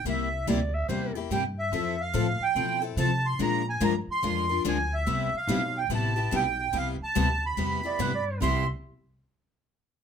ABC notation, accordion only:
X:1
M:4/4
L:1/8
Q:"Swing" 1/4=144
K:C
V:1 name="Accordion"
e2 z4 g e- | e f2 g2 z a c' | _b _a b c'3 a e- | e f2 g a2 g2 |
f a2 b4 z | c' z6 z |]